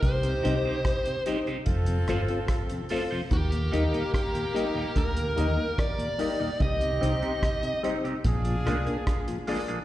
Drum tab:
HH |xxx-xxxxxxxxxxo-|xxxxxxx-xxx-xxo-|xxxxxxxxxxxxxxox|
SD |----r-----r-r---|----r-------r---|----r-----r-r---|
BD |o---o---o---o---|o---o---o---o---|o---o---o---o---|